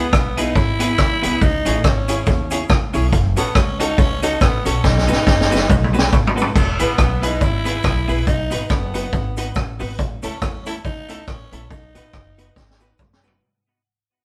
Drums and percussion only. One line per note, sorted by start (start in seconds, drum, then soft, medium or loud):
0.13 kick loud
0.13 cross-stick loud
0.13 cabasa medium
0.37 closed hi-hat medium
0.37 cabasa medium
0.55 kick loud
0.55 cabasa soft
0.80 closed hi-hat loud
0.80 cabasa medium
0.98 kick loud
0.98 cross-stick loud
0.98 cabasa medium
1.23 closed hi-hat medium
1.23 cabasa medium
1.41 kick loud
1.41 cabasa medium
1.66 closed hi-hat medium
1.66 cabasa medium
1.84 kick loud
1.84 cross-stick loud
1.84 cabasa medium
2.08 closed hi-hat medium
2.08 cabasa medium
2.26 kick loud
2.26 cabasa medium
2.51 closed hi-hat medium
2.51 cabasa medium
2.69 kick loud
2.69 cross-stick loud
2.69 cabasa medium
2.94 open hi-hat medium
2.94 cabasa medium
3.13 kick loud
3.13 hi-hat pedal medium
3.13 cabasa medium
3.37 closed hi-hat medium
3.37 cabasa medium
3.55 kick loud
3.55 cross-stick loud
3.55 cabasa medium
3.80 closed hi-hat loud
3.80 cabasa medium
3.98 kick loud
3.98 cabasa medium
4.23 closed hi-hat medium
4.23 cabasa medium
4.41 kick loud
4.41 cross-stick loud
4.41 cabasa medium
4.66 closed hi-hat medium
4.66 cabasa medium
4.84 kick loud
4.84 snare medium
4.84 cabasa medium
4.98 snare medium
5.08 cabasa medium
5.12 snare medium
5.27 kick loud
5.27 snare medium
5.27 cabasa medium
5.41 snare medium
5.52 snare medium
5.52 cabasa medium
5.69 kick loud
5.69 mid tom medium
5.69 cabasa soft
5.84 mid tom medium
5.94 cabasa medium
5.98 snare medium
6.12 kick loud
6.12 floor tom medium
6.12 cabasa medium
6.27 floor tom loud
6.38 floor tom medium
6.38 cabasa medium
6.56 kick loud
6.56 crash loud
6.56 cabasa medium
6.80 closed hi-hat medium
6.80 cabasa medium
6.98 kick loud
6.98 cross-stick loud
6.98 cabasa medium
7.23 closed hi-hat medium
7.23 cabasa medium
7.41 kick loud
7.41 cabasa soft
7.65 closed hi-hat loud
7.65 cabasa medium
7.83 kick loud
7.83 cross-stick loud
7.83 cabasa medium
8.09 open hi-hat medium
8.09 cabasa medium
8.27 kick loud
8.27 hi-hat pedal medium
8.27 cabasa medium
8.51 closed hi-hat medium
8.51 cabasa medium
8.69 kick loud
8.69 cross-stick loud
8.69 cabasa medium
8.94 closed hi-hat medium
8.94 cabasa medium
9.13 kick loud
9.13 cabasa soft
9.37 closed hi-hat medium
9.37 cabasa medium
9.55 kick loud
9.55 cross-stick loud
9.55 cabasa medium
9.80 open hi-hat medium
9.80 cabasa medium
9.98 kick loud
9.98 hi-hat pedal medium
9.98 cabasa medium
10.23 closed hi-hat medium
10.23 cabasa medium
10.42 kick loud
10.42 cross-stick loud
10.42 cabasa medium
10.66 closed hi-hat medium
10.66 cabasa medium
10.85 kick loud
10.85 cabasa medium
11.09 closed hi-hat loud
11.09 cabasa medium
11.27 kick loud
11.27 cross-stick loud
11.27 cabasa medium
11.52 closed hi-hat medium
11.52 cabasa medium
11.71 kick loud
11.71 cabasa medium
11.95 closed hi-hat medium
11.95 cabasa medium
12.13 kick loud
12.13 cross-stick loud
12.13 cabasa medium
12.38 closed hi-hat medium
12.38 cabasa medium
12.56 kick loud
12.56 snare medium
12.56 cabasa soft
12.71 snare medium
12.80 cabasa medium
12.99 kick loud
12.99 mid tom medium
12.99 cabasa medium
13.13 snare loud
13.23 floor tom loud
13.23 cabasa medium